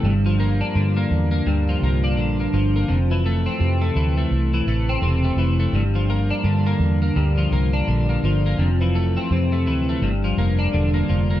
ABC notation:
X:1
M:4/4
L:1/16
Q:"Swing 16ths" 1/4=84
K:Gdor
V:1 name="Clean electric guitar"
G,, F, B, D D, B,2 B, G,, F, B, D D, B, F, B, | F,, E, A, C C, A, E, A,2 E, A, C C, A, E, A, | G,, F, B, D D, B,2 B, G,, F, B, D D, B, F, B, | F,, E, A, C C, A, E, A, G,, F, B, D D, B, F, B, |]
V:2 name="Fingered electric bass" clef=bass
G,,,4 G,,2 E,,2 D,,2 C,,2 B,,,2 G,,,2 | F,,,4 F,,2 D,,2 C,,2 A,,,2 E,,,2 F,,,2 | G,,,4 G,,2 E,,2 D,,2 C,,2 B,,,2 G,,,2 | F,,,4 F,,2 D,,2 G,,,2 F,,,2 E,,,2 F,,,2 |]